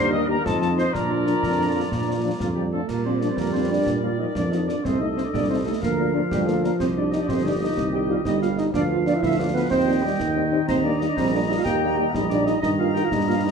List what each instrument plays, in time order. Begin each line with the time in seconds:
Already playing: tuba D#2, trombone section G3 A#3, euphonium D4, woodwind section G4 A#4, trumpet section C5, piccolo C6
0.11 french horn section A#3 D#4 G4, trumpet section D#5, piccolo D#6
0.27 french horn section A#3 D#4 G4, trumpet section A#4, piccolo A#5
0.44 tuba F2, trombone section F3 D#4, euphonium C4, woodwind section F4 D#5, trumpet section A4, piccolo A5, concert bass drum, snare
0.61 french horn section F3 D#4 F4, trumpet section A4, piccolo A5, snare
0.77 french horn section F3 D#4 F4, trumpet section C5, piccolo C6, snare
0.93 tuba A#2, trombone section F3 D4, euphonium D4, woodwind section F4 D5, trumpet section A#4, piccolo A#5, concert bass drum, snare
1.10 french horn section F3 D4 F4
1.26 french horn section F3 D4 F4, snare
1.43 tuba F2, concert bass drum, snare
1.59 french horn section F3 D4 F4
1.76 french horn section F3 D4 F4
1.91 tuba A#2, concert bass drum, snare
2.07 french horn section F3 D4 F4
2.23 french horn section F3 D4 F4
2.40 tuba F2, euphonium F3, trumpet section F4, concert bass drum, snare
2.55 french horn section F3 D4 F4, euphonium G3, trumpet section G4
2.72 french horn section F3 D4 F4, euphonium A3, trumpet section A4
2.88 tuba A#2, trombone section G3, euphonium A#3, trumpet section A#4, woodwind section A#4 D5, concert bass drum, snare, crash
3.05 french horn section F3 D4 F4, euphonium C4, trumpet section C5
3.20 french horn section F3 D4 F4, euphonium D4, trumpet section D5, snare
3.28 euphonium C4, trumpet section C5
3.36 tuba F2, euphonium A#3, trumpet section A#4, concert bass drum, snare
3.52 french horn section F3 D4 F4, euphonium C4, trumpet section C5
3.69 french horn section F3 D4 F4, euphonium D4, trumpet section D5
3.86 tuba A#2, concert bass drum, snare
4.02 french horn section F3 D4 F4, euphonium F4, trumpet section F5
4.19 french horn section F3 D4 F4, euphonium D#4, trumpet section D#5
4.35 tuba F2, trombone section F3, euphonium D4, trumpet section D5, concert bass drum, snare
4.51 french horn section F3 D4 F4, euphonium D#4, trumpet section D#5, snare
4.67 french horn section F3 D4 F4, euphonium D4, trumpet section D5, snare
4.84 tuba C2, trombone section A3, euphonium C4, woodwind section A4 D#5, trumpet section C5, concert bass drum, snare
5.00 french horn section A3 D#4, euphonium D#4, trumpet section D#5
5.16 french horn section A3 D#4, euphonium C4, trumpet section C5, snare
5.23 euphonium D4, trumpet section D5
5.33 tuba C2, trombone section G3, euphonium D4, trumpet section D5, concert bass drum, snare
5.49 french horn section A3 D#4, euphonium C4, trumpet section C5
5.65 french horn section A3 D#4, euphonium A3, trumpet section A4
5.81 tuba D2, trombone section F3, euphonium A#3, woodwind section A#4 F5, trumpet section A#4, concert bass drum, snare
5.98 french horn section A#3 D4 F4
6.14 euphonium F3, french horn section A#3 D4 F4, trumpet section F4
6.30 tuba D2, euphonium G3, trumpet section G4, concert bass drum, snare
6.47 euphonium A3, french horn section A#3 D4 F4, trumpet section A4, snare
6.63 euphonium A#3, french horn section A#3 D4 F4, trumpet section A#4, snare
6.79 tuba C2, euphonium C4, woodwind section G4 D#5, trumpet section C5, concert bass drum, snare, crash
6.96 french horn section G3 D#4, euphonium D4, trumpet section D5
7.10 french horn section G3 D#4, euphonium D#4, trumpet section D#5, snare
7.20 euphonium D4, trumpet section D5
7.28 tuba G1, euphonium C4, trumpet section C5, concert bass drum, snare
7.45 french horn section G3 D#4, euphonium D4, trumpet section D5
7.61 french horn section G3 D#4, euphonium D#4, trumpet section D#5
7.76 tuba C2, trombone section D#3, concert bass drum, snare
7.93 french horn section G3 D#4, euphonium G4, trumpet section G5
8.09 french horn section G3 D#4, euphonium F4, trumpet section F5
8.25 tuba G1, trombone section G3, euphonium D#4, trumpet section D#5, concert bass drum, snare
8.41 french horn section G3 D#4, euphonium F4, trumpet section F5, snare
8.58 french horn section G3 D#4, euphonium D#4, trumpet section D#5, snare
8.73 tuba D2, trombone section F3, euphonium D4, woodwind section B4 F5, trumpet section D5, concert bass drum, snare
8.91 french horn section F3 B3 F4, euphonium F4, trumpet section F5
9.06 french horn section F3 B3 F4, euphonium D4, trumpet section D5, snare
9.14 euphonium E4, trumpet section E5
9.21 tuba D2, euphonium E4, trumpet section E5, concert bass drum, snare
9.38 french horn section F3 B3 F4, euphonium D4, trumpet section D5
9.54 french horn section F3 B3 F4, euphonium B3, trumpet section B4
9.70 tuba D#2, euphonium C4, trumpet section C5, woodwind section D#5 G5, concert bass drum, snare
9.87 french horn section G3 C4 D#4
10.03 french horn section G3 C4 D#4, euphonium G3, trumpet section G4
10.18 tuba D#2, trombone section D#3, concert bass drum, snare
10.36 french horn section G3 C4 D#4
10.52 french horn section G3 C4 D#4
10.67 tuba D#2, euphonium C4, trumpet section C5, woodwind section D#5 A#5, concert bass drum, snare, crash
10.83 french horn section G3 A#3 D#4, euphonium D4, trumpet section D5
10.99 french horn section G3 A#3 D#4, euphonium D#4, trumpet section D#5, snare
11.07 euphonium D4, trumpet section D5
11.14 tuba A#1, trombone section G3, euphonium C4, trumpet section C5, concert bass drum, snare
11.33 french horn section G3 A#3 D#4, euphonium D4, trumpet section D5
11.48 french horn section G3 A#3 D#4, euphonium D#4, trumpet section D#5
11.57 euphonium F4, trumpet section F5
11.64 tuba D#2, trombone section A#3, euphonium G4, trumpet section G5, concert bass drum, snare
11.82 french horn section G3 A#3 D#4
11.97 french horn section G3 A#3 D#4, euphonium G4, trumpet section G5
12.12 tuba A#1, trombone section G3, euphonium D#4, trumpet section D#5, concert bass drum, snare
12.28 french horn section G3 A#3 D#4, euphonium D4, trumpet section D5, snare
12.45 french horn section G3 A#3 D#4, euphonium D#4, trumpet section D#5, snare
12.60 tuba G2, trombone section D#3, euphonium D#4, trumpet section D#5, woodwind section D#5 A#5, concert bass drum, snare
12.78 french horn section A#3 D#4, euphonium F4, trumpet section F5
12.94 french horn section A#3 D#4, euphonium G4, trumpet section G5, snare
13.03 euphonium F4, trumpet section F5
13.11 tuba G2, trombone section G3, euphonium D#4, trumpet section D#5, concert bass drum, snare
13.27 french horn section A#3 D#4, euphonium F4, trumpet section F5
13.44 french horn section A#3 D#4, euphonium D#4, trumpet section D#5